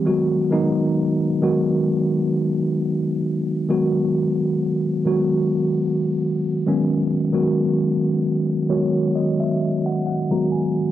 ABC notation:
X:1
M:4/4
L:1/16
Q:"Swing 16ths" 1/4=66
K:G#m
V:1 name="Tine electric piano"
z16 | z16 | z6 c2 d e2 f f a g2 |]
V:2 name="Tine electric piano" clef=bass
[D,F,G,B,F]2 [D,F,G,B,D]3 z [D,F,G,B,F]6 z4 | [D,F,G,B,F]4- [D,F,G,B,F] z [D,F,G,B,F]6 z [D,F,G,B,C]2 z | [D,F,G,B,F]4- [D,F,G,B,F] z [D,F,G,B,F]6 z [D,F,G,B,F]2 z |]